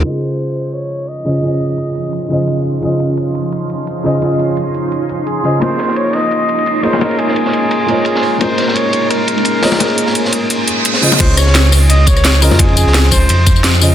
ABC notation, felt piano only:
X:1
M:4/4
L:1/8
Q:"Swing 16ths" 1/4=172
K:Db
V:1 name="Felt piano"
[D,DFe]6- [D,DFe] [D,DFce] | [D,DFce]4- [D,DFce] [D,DFce]3 | [D,DFce]6- [D,DFce] [D,DFce] | [D,DFce]4- [D,DFce] z2 [D,DFce] |
[B,DFAce]6- [B,DFAce] [B,FAcde] | [B,FAcde]4- [B,FAcde] [B,FAcde]3 | [B,DFABe]6- [B,DFABe] [B,FAcde] | [B,FAcde]4- [B,FAcde] z2 [D,DFce] |
[D,DFde]6- [D,DFde] [D,DFce] | [D,DFce]4- [D,DFce] z2 [D,DFce] |]